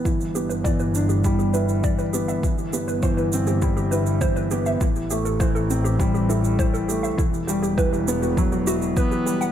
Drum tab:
SH |xxxxxxxxxxxxxxxx|xxxxxxxxxxxxxxxx|xxxxxxxxxxxxxxxx|xxxxxxxxxxxxxxxx|
BD |o---o---o---o---|o---o---o---o---|o---o---o---o---|o---o---o---o---|